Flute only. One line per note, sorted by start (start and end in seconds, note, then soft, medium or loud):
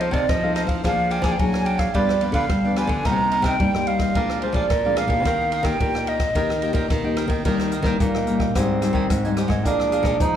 0.01 0.15 C5 medium
0.13 0.31 D5 medium
0.29 0.55 D#5 medium
0.56 0.62 D#5 medium
0.85 1.13 F5 medium
1.11 1.25 G5 medium
1.23 1.33 G#5 medium
1.32 1.41 G5 medium
1.40 1.67 G#5 medium
1.66 1.81 G5 medium
1.79 1.96 F5 medium
1.95 2.22 D5 medium
2.34 2.79 F5 medium
2.78 3.08 G#5 medium
3.06 3.47 A#5 loud
3.45 3.89 G5 medium
3.87 4.41 F5 medium
4.42 4.56 C5 medium
4.54 4.99 D5 medium
4.97 5.66 F5 medium
5.65 6.10 G5 medium
6.08 6.91 D#5 medium